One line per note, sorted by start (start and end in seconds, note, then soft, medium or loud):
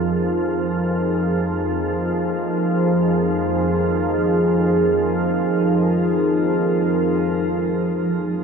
0.00 7.94 F2 medium
0.00 7.95 F3 medium
0.00 8.44 F3 medium
0.00 8.44 D#4 medium
0.00 8.44 G#4 medium
0.00 8.44 A#4 medium